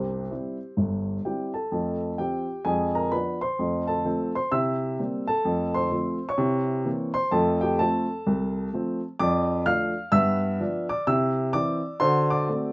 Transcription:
Already playing: C2 C3 G4 C5
0.31 G3 C4 E4
0.77 G1 G2
1.25 G3 C4 E4 G4 G5
1.54 A4 A5
1.72 F2 A3
2.18 F3 C4 F4 G4 G5
2.65 F2 G#3 G#4 G#5
2.95 A#4 A#5
3.12 F3 B3 D4 B4 B5
3.41 C5 C6
3.59 F2 A3
3.87 A4 A5
4.05 F3 A3 C4
4.35 C5 C6
4.52 C3 E4 E5 E6
4.99 G3 A#3 C4
5.27 A4 A5
5.45 F2 A3
5.74 C5 C6
5.91 F3 A3 C4
6.29 C#5 C#6
6.38 C3 E4
6.85 E3 A#3 C4
7.14 C5 C6
7.31 F2 A3 A4 A5
7.61 G4 G5
7.79 F3 A3 C4 A4 A5
8.27 C2
8.74 F3 A3 C4
9.19 F2 D5 D6
9.66 F3 A3 D4 F5 F6
10.12 G2 B3 E5 E6
10.60 F3 B3 D4
10.89 D5 D6
11.07 C3 E4 E5 E6
11.53 E3 C4 E4 D5 D6
12.00 D3 F#4 C5 C6
12.30 D5 D6
12.49 A3 C4 F#4

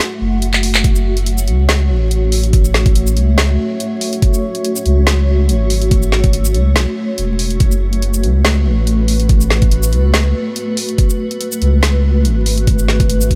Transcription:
Already playing: A3 F#4 F#5
0.21 F#1
0.42 closed hi-hat
0.53 clap
0.63 open hi-hat
0.75 clap, closed hi-hat
0.84 F#1 C#5, kick, closed hi-hat
0.96 shaker
1.17 closed hi-hat
1.26 closed hi-hat
1.38 shaker
1.48 C#2, closed hi-hat
1.69 snare, closed hi-hat
1.90 A1
2.11 closed hi-hat
2.32 open hi-hat
2.43 closed hi-hat
2.53 kick, closed hi-hat
2.65 shaker
2.74 snare
2.86 kick, closed hi-hat
2.95 closed hi-hat
3.07 shaker
3.17 C#2, closed hi-hat
3.38 snare, closed hi-hat
3.80 closed hi-hat
4.01 open hi-hat
4.13 closed hi-hat
4.22 kick, closed hi-hat
4.34 shaker
4.55 closed hi-hat
4.65 closed hi-hat
4.76 shaker
4.86 C#2, closed hi-hat
5.07 snare, closed hi-hat
5.49 G#1, closed hi-hat
5.70 open hi-hat
5.81 closed hi-hat
5.91 kick, closed hi-hat
6.03 shaker
6.12 snare
6.24 kick, closed hi-hat
6.33 closed hi-hat
6.45 shaker
6.55 C#2, closed hi-hat
6.76 B1, snare, closed hi-hat
7.18 E1, closed hi-hat
7.39 open hi-hat
7.50 closed hi-hat
7.60 F#1 B4, kick, closed hi-hat
7.72 shaker
7.93 closed hi-hat
8.02 closed hi-hat
8.14 shaker
8.24 C#2, closed hi-hat
8.45 snare, closed hi-hat
8.66 A1
8.87 closed hi-hat
9.08 open hi-hat
9.20 closed hi-hat
9.29 kick, closed hi-hat
9.41 shaker
9.50 snare
9.62 kick, closed hi-hat
9.71 closed hi-hat
9.83 shaker
9.93 C#2, closed hi-hat
10.14 snare, closed hi-hat
10.56 closed hi-hat
10.77 open hi-hat
10.89 closed hi-hat
10.98 kick, closed hi-hat
11.10 shaker
11.31 closed hi-hat
11.41 closed hi-hat
11.52 shaker
11.62 C#2, closed hi-hat
11.83 snare, closed hi-hat
12.25 G#1, closed hi-hat
12.46 open hi-hat
12.58 closed hi-hat
12.67 kick, closed hi-hat
12.79 shaker
12.88 snare
13.00 kick, closed hi-hat
13.09 closed hi-hat
13.21 shaker
13.31 C#2, kick, closed hi-hat

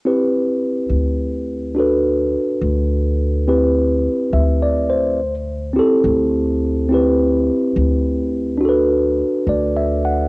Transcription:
0.05 C4 E4 G4 B4
0.89 D2
1.75 D4 F#4 A4
1.80 B4
2.61 D2
3.48 C4 E4 G4 B4
4.33 D2 E5
4.62 D5
4.90 C5
5.73 C4 E4 G4
5.79 A4
6.04 D2
6.89 C4 E4 G4
6.94 B4
7.76 D2
8.57 D4 F#4
8.65 A4 B4
9.47 D2 D5
9.76 E5
10.05 F#5

